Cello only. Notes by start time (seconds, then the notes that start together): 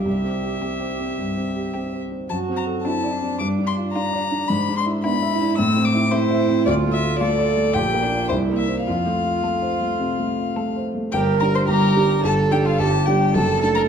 0.06 G4
2.31 F#4
2.86 E4
3.12 D4
5.05 B3
5.31 E4
5.59 C4
6.13 E4
6.66 F4
7.21 A4
7.75 G4
8.02 D4
8.32 E4
8.87 F4
11.13 A#4
11.68 G4
12.24 A4
12.80 G4
13.35 A4